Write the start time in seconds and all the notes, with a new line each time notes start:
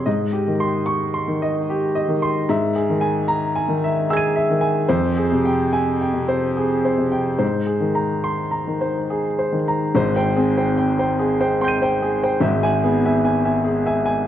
0.06 G#2 D#5
0.33 G4
0.47 D#3
0.60 C6
0.86 C#6
1.14 C6
1.28 D#3
1.42 D#5
1.70 G4
1.95 D#5
2.08 D#3
2.22 C6
2.49 G#2 E5
2.76 G#4
2.90 D#3
3.01 G#5
3.28 A#5
3.56 G#5
3.68 D#3
3.84 E5
4.10 G#4 E6 G#6
4.17 D#7
4.36 E5
4.50 D#3
4.61 G#5
4.89 F2 C5
5.17 G#4
5.32 C3
5.45 G5
5.73 G#5
6.01 G5
6.14 C3
6.28 C5
6.57 G#4
6.85 C5
6.98 C3
7.12 G5
7.38 G#2 C5
7.66 G#4
7.80 D#3
7.95 A#5
8.24 C6
8.51 A#5
8.67 D#3
8.81 C5
9.10 G#4
9.39 C5
9.52 D#3
9.68 A#5
9.95 G#1 G#2 C5
10.16 C5 G5
10.36 C4 G#4
10.57 C5 G5
10.77 G5
10.99 C5 G5
11.19 G#4
11.41 C5 G5
11.61 G5 C6 G6
11.68 D#7
11.82 C5 G5
12.02 G#4
12.23 C5 G5
12.40 G#1 G#2 E5
12.63 E5 G#5
12.84 B3 G#4
13.05 E5 G#5
13.25 G#5
13.45 E5 G#5
13.64 G#4
13.86 E5 G#5
14.06 G#5